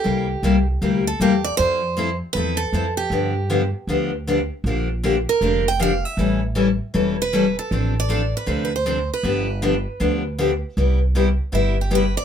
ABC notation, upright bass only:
X:1
M:4/4
L:1/8
Q:"Swing" 1/4=157
K:C
V:1 name="Upright bass" clef=bass
C,,2 C,,2 D,,2 E,,2 | F,,4 E,,2 F,,2 | G,,4 D,,4 | _B,,,4 F,,,4 |
A,,,4 E,,,4 | A,,,4 D,,4 | G,,,4 D,,4 | C,,4 G,,,4 |]